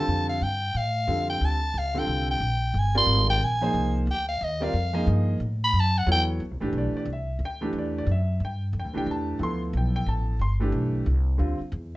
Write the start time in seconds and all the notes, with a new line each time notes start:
Already playing: D3 G3 C4 F4 A4 A5
0.08 F2
0.29 F5
0.41 G2 G5
0.74 A2 F5
1.07 F2 D3 G3 C4 F4 A4
1.30 G5
1.41 D2 A5
1.74 C#2
1.78 F5
1.94 D3 G3 C4 F4 A4
1.99 G5
2.07 C2
2.31 G5
2.40 A#1
2.74 G1
2.79 G#5
2.95 G3 C4 F4 A#4 D5 C6
3.06 G#1
3.30 G5
3.40 A#1 G#5
3.61 F3 A#3 D#4 G#4 C5
3.74 C2
4.07 D2 G5
4.28 F5
4.41 D#2 D#5
4.60 G3 C4 F4 A#4 D5 F5
4.73 F2
4.93 F3 A#3 D#4 G#4 D#5
5.07 G2
5.40 A2
5.64 B5
5.73 F#2
5.80 A5
5.98 F#5
6.06 E2 F#3 B3 E4 A4 C#5
6.12 G5
6.40 D2
6.51 C2
6.60 A1 E3 A3 D4 G4
6.73 B1
6.78 D5
6.93 D5, muted upright bass stroke
7.05 C2
7.13 E5
7.39 D2
7.45 G5
7.61 E3 A3 D4 G4
7.73 E2
7.78 D5
7.98 D5
8.07 F#2
8.11 E5
8.40 G2
8.45 G5
8.73 F2
8.79 G5
8.85 D2
8.93 C2 E3 A3 D4 G4
8.98 G5
9.06 E2
9.11 A5
9.39 D2 F3 B3 E4 A4
9.43 C6
9.73 B1 G5
9.96 G5
10.06 A1 A5
10.39 G1 C6
10.60 E3 A3 D4 G4
10.72 B1
11.06 C2
11.38 D2 D3 G3 C4 F4
11.60 muted upright bass stroke
11.72 E2